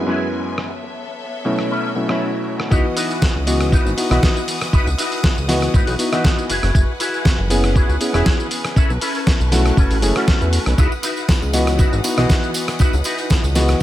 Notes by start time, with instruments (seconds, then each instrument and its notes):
Already playing: string section E3 F#3 B4 G#5
0.06 electric grand piano F#2 G#3 B3 C#4 E4, clean electric guitar E4 F#4 G#4 B4
0.44 muted clean electric guitar stroke
0.58 cross-stick
0.69 string section B3 A4 C#5 E5, muted clean electric guitar stroke
0.83 muted clean electric guitar stroke
0.95 muted clean electric guitar stroke
1.45 electric grand piano B2 F#3 A3 C#4 E4
1.59 cross-stick
1.70 clean electric guitar C#4 E4 A4 B4
1.95 electric grand piano B2 F#3 A3 C#4 E4
2.08 electric grand piano B2 F#3 A3 C#4 E4, clean electric guitar C#4 E4 A4 B4, cross-stick
2.46 muted clean electric guitar stroke
2.60 cross-stick
2.70 analog synth bass C#2, electric grand piano E3 B3 F#4 D#5, clean electric guitar D#4 E4 F#4 B4, string section B4 F#5 D#6, kick, tambourine
2.96 clean electric guitar D#4 E4 F#4 B4, open hi-hat, tambourine
3.11 tambourine
3.22 kick, snare, tambourine
3.35 analog synth bass C#2
3.47 electric grand piano E3 B3 F#4 D#5, open hi-hat, tambourine
3.61 cross-stick, tambourine
3.72 clean electric guitar D#4 E4 F#4 B4, kick, tambourine
3.86 analog synth bass G#1, tambourine
3.97 electric grand piano B3 D#4 E4 F#4, open hi-hat, tambourine
4.10 analog synth bass B1, electric grand piano E3 B3 F#4 D#5, clean electric guitar D#4 E4 F#4 B4, cross-stick, tambourine
4.23 kick, snare, tambourine
4.37 tambourine
4.48 open hi-hat, tambourine
4.61 cross-stick, tambourine
4.73 analog synth bass C#2, clean electric guitar D#4 E4 F#4 B4, kick, tambourine
4.87 analog synth bass C#2, tambourine
4.98 clean electric guitar D#4 E4 F#4 B4, open hi-hat, tambourine
5.12 open hi-hat, tambourine
5.24 kick, snare, tambourine
5.37 analog synth bass C#2, tambourine
5.48 electric grand piano E3 B3 F#4 D#5, snare, open hi-hat, tambourine
5.62 cross-stick, tambourine
5.73 analog synth bass G#1, clean electric guitar D#4 E4 F#4 B4, kick, tambourine
5.87 analog synth bass B1, open hi-hat, tambourine
5.99 electric grand piano B3 D#4 E4 F#4, open hi-hat, tambourine
6.12 electric grand piano E3 B3 F#4 D#5, clean electric guitar D#4 E4 F#4 B4, cross-stick, tambourine
6.24 kick, snare, tambourine
6.38 tambourine
6.49 analog synth bass F#1, clean electric guitar E4 F#4 G#4 B4, string section F#5 G#5, open hi-hat, tambourine
6.63 analog synth bass F#1, cross-stick, tambourine
6.75 analog synth bass F#1, kick, tambourine
7.00 clean electric guitar E4 F#4 G#4 B4, open hi-hat, tambourine
7.14 tambourine
7.25 kick, snare, tambourine
7.39 analog synth bass F#1
7.50 electric grand piano B3 C#4 E4 G#4, open hi-hat, tambourine
7.64 cross-stick, tambourine
7.75 clean electric guitar E4 F#4 G#4 B4, kick, tambourine
7.89 analog synth bass C#2, tambourine
8.00 electric grand piano B3 C#4 E4 G#4, open hi-hat, tambourine
8.13 analog synth bass E1, electric grand piano B3 C#4 E4 G#4, clean electric guitar E4 F#4 G#4 B4, cross-stick, tambourine
8.26 kick, snare, tambourine
8.40 tambourine
8.51 open hi-hat, tambourine
8.65 cross-stick, tambourine
8.76 analog synth bass B1, clean electric guitar C#4 E4 A4 B4, string section A5 C#6, kick, tambourine
8.90 analog synth bass B1, tambourine
9.01 clean electric guitar C#4 E4 A4 B4, open hi-hat, tambourine
9.15 open hi-hat, tambourine
9.27 kick, snare, tambourine
9.40 analog synth bass B1, tambourine
9.52 electric grand piano A3 C#4 E4 F#4, snare, open hi-hat, tambourine
9.66 cross-stick, tambourine
9.77 analog synth bass F#1, clean electric guitar C#4 E4 A4 B4, kick, tambourine
9.91 analog synth bass A1, open hi-hat, tambourine
10.02 analog synth bass F#1, electric grand piano A3 C#4 E4 G#4, open hi-hat, tambourine
10.15 electric grand piano A3 C#4 E4 F#4, clean electric guitar C#4 E4 A4 B4, cross-stick, tambourine
10.28 kick, snare, tambourine
10.41 analog synth bass E2, tambourine
10.53 open hi-hat, tambourine
10.66 analog synth bass B1, cross-stick, tambourine
10.78 analog synth bass C#2, clean electric guitar D#4 E4 F#4 B4, string section F#5 D#6, kick, tambourine
10.92 tambourine
11.03 clean electric guitar D#4 E4 F#4 B4, open hi-hat, tambourine
11.17 tambourine
11.29 kick, snare, tambourine
11.42 analog synth bass C#2, tambourine
11.53 electric grand piano E3 B3 F#4 D#5, open hi-hat, tambourine
11.67 cross-stick, tambourine
11.79 clean electric guitar D#4 E4 F#4 B4, kick, tambourine
11.92 analog synth bass G#1, tambourine
12.04 electric grand piano B3 D#4 E4 F#4, open hi-hat, tambourine
12.17 analog synth bass B1, electric grand piano E3 B3 F#4 D#5, clean electric guitar D#4 E4 F#4 G#4, cross-stick, tambourine
12.29 kick, snare, tambourine
12.43 tambourine
12.54 open hi-hat, tambourine
12.68 cross-stick, tambourine
12.79 analog synth bass C#2, clean electric guitar D#4 E4 F#4 B4, kick, tambourine
12.93 analog synth bass C#2, tambourine
13.04 clean electric guitar D#4 E4 F#4 B4, open hi-hat, tambourine
13.06 tambourine
13.18 open hi-hat, tambourine
13.30 kick, snare, tambourine
13.44 analog synth bass C#2, tambourine
13.55 electric grand piano E3 B3 F#4 D#5, snare, open hi-hat, tambourine
13.69 cross-stick, tambourine